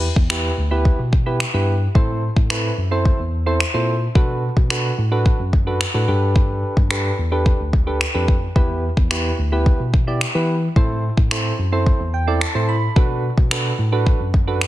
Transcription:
0.16 E2, kick
0.30 B3 E4 G4 B4, finger snap
0.58 D2
0.71 B3 E4 G4 B4
0.85 kick
0.99 B2
1.13 kick
1.26 B3 E4 G4 B4
1.40 finger snap
1.54 G2 B3 E4 G4 B4
1.95 A2 C4 E4 A4 C5, kick
2.36 A2, kick
2.50 C4 E4 A4 B4, finger snap
2.78 F#2
2.91 C4 E4 A4 C5
3.05 kick
3.19 E2
3.46 C4 E4 A4 C5
3.60 finger snap
3.74 A#2 C4 E4 A4 C5
4.15 B2 D4 F#4 A4 B4, kick
4.57 B2, kick
4.70 D4 F#4 A4 B4, finger snap
4.98 A2
5.11 D4 F#4 A4 B4
5.26 kick
5.39 F#2
5.53 kick
5.67 D4 F#4 A4 B4
5.81 finger snap
5.94 A2 D4 F#4 A4 B4
6.08 G2 D4 G4 A4 B4
6.36 kick
6.77 G2, kick
6.91 D4 G4 A4 B4, finger snap
7.18 E2
7.32 D4 G4 A4 B4
7.46 kick
7.60 D2
7.73 kick
7.87 D4 G4 A4 B4
8.01 finger snap
8.14 F2 D4 G4 A4 B4
8.28 kick
8.55 E2 B3 E4 G4 B4, kick
8.97 E2, kick
9.11 B3 E4 G4 B4, finger snap
9.38 D2
9.52 B3 E4 G4 B4
9.66 kick
9.80 B2
9.94 kick
10.07 B3 E4 G4 D5
10.21 finger snap
10.35 E3 B3 E4 G4 B4
10.76 A2 C4 E4 A4 C5, kick
11.17 A2, kick
11.31 C4 E4 A4 C5, finger snap
11.59 F#2
11.72 C4 E4 A4 C5
11.86 kick
12.00 E2
12.14 G5
12.27 C4 E4 A4 D5
12.41 A5, finger snap
12.55 A2 C4 E4 A4 C5
12.69 B5
12.96 B2 D4 F#4 A4 B4, kick
13.38 B2, kick
13.51 D4 F#4 A4 B4, finger snap
13.79 A2
13.92 D4 F#4 A4 B4
14.07 kick
14.20 F#2
14.34 kick
14.47 D4 F#4 A4 B4
14.61 finger snap

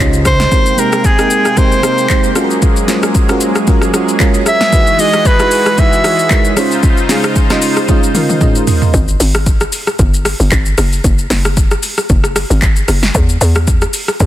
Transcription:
Already playing: C#2 C#3 D#4 F4 G4 C5 C#5
0.00 G#3 C#4 D#4 F4 D#5
0.13 shaker
0.25 C5, kick, cross-stick, shaker
0.40 snare, shaker
0.51 C3 G#3 A#3 C4 D#4 G4 A#4 G5, kick, shaker
0.66 shaker
0.77 G#3 C4 D#4 G4 A#4, shaker
0.92 cross-stick, shaker
1.04 G#4, kick, shaker
1.18 G#3 C4 D#4 A#4 G5, cross-stick, shaker
1.30 shaker
1.45 cross-stick, shaker
1.56 G#3 C4 D#4 G4 A#4 C5, kick, shaker
1.72 shaker
1.83 G#3 C4 D#4 G4 A#4, cross-stick, shaker
1.98 shaker
2.09 G#3 C4 D#4 G4 C5, kick, clap, shaker
2.24 shaker
2.35 F#3 G#3 C#4 F4 F#4 G#4 A4, cross-stick, shaker
2.44 A#4
2.50 shaker
2.62 kick, shaker
2.76 shaker
2.88 G#3 C#4 F4 F#4 C5, snare, shaker
3.03 cross-stick, shaker
3.15 kick, shaker
3.29 G#3 C#4 F4 F#4 A#4, cross-stick, shaker
3.41 shaker
3.55 cross-stick, shaker
3.67 G#3 C#4 F4 F#4 A#4, kick, shaker
3.81 cross-stick, shaker
3.93 G#3 C#4 F4 F#4 C#5, cross-stick, shaker
4.08 shaker
4.19 G#3 C#4 F4 F#4 A#4, kick, clap, shaker
4.34 shaker
4.46 E5, cross-stick, shaker
4.61 snare, shaker
4.72 E3 G#3 D#4 E4 F#4 B4, kick, shaker
4.87 shaker
4.98 G#3 D#4 E4 F#4 G#4 D#5, open hi-hat, shaker
5.13 cross-stick, shaker
5.25 B4, kick, shaker
5.39 G#3 D#4 E4 F#4 B4, cross-stick, shaker
5.51 open hi-hat, shaker
5.66 cross-stick, shaker
5.77 G#3 D#4 E4 F#4 B4 E5, kick, shaker
5.93 shaker
6.04 G#3 D#4 E4 F#4 C#5, cross-stick, open hi-hat, shaker
6.19 shaker
6.30 G#3 D#4 E4 F#4 A#4, kick, clap, shaker
6.45 shaker
6.56 C#3 G#3 C#4 D#4 F4 C5, cross-stick, open hi-hat, shaker
6.72 shaker
6.83 kick, shaker
6.97 shaker
7.09 G#3 C#4 D#4 F4 G#4, snare, open hi-hat, shaker
7.24 cross-stick, shaker
7.36 kick, shaker
7.50 G#3 C#4 D#4 F4 D#5, cross-stick, snare, shaker
7.62 open hi-hat, shaker
7.77 cross-stick, shaker
7.88 G#3 C#4 D#4 F4 D#5, kick, high tom, shaker
8.03 shaker
8.14 G#3 C#4 D#4 F4 A#4, open hi-hat, mid tom, shaker
8.29 mid tom, shaker
8.41 G#3 C#4 D#4 F4 D#5, kick, mid tom, shaker
8.55 shaker
8.67 floor tom, open hi-hat, shaker
8.82 floor tom, shaker
8.94 G#1, kick, shaker
9.08 shaker
9.20 G#1, open hi-hat, shaker
9.34 cross-stick, shaker
9.46 kick, shaker
9.61 cross-stick, shaker
9.72 open hi-hat, shaker
9.87 cross-stick, shaker
9.99 G1, kick, shaker
10.14 shaker
10.25 cross-stick, open hi-hat, shaker
10.40 G1, shaker
10.52 G#1, kick, clap, shaker
10.66 shaker
10.78 F#1, cross-stick, open hi-hat, shaker
10.93 shaker
11.04 F#1, kick, shaker
11.19 shaker
11.30 F#1, snare, open hi-hat, shaker
11.45 cross-stick, shaker
11.57 kick, shaker
11.71 cross-stick, shaker
11.83 open hi-hat, shaker
11.98 cross-stick, shaker
12.09 F#1, kick, shaker
12.24 cross-stick, shaker
12.36 cross-stick, open hi-hat, shaker
12.50 G#1, shaker
12.62 kick, clap, shaker
12.76 shaker
12.88 F#1, cross-stick, open hi-hat, shaker
13.03 snare, shaker
13.15 E2, kick, shaker
13.29 shaker
13.41 E2, open hi-hat, shaker
13.55 cross-stick, shaker
13.67 kick, shaker
13.82 cross-stick, shaker
13.93 open hi-hat, shaker
14.08 cross-stick, shaker
14.20 D#2, kick, shaker

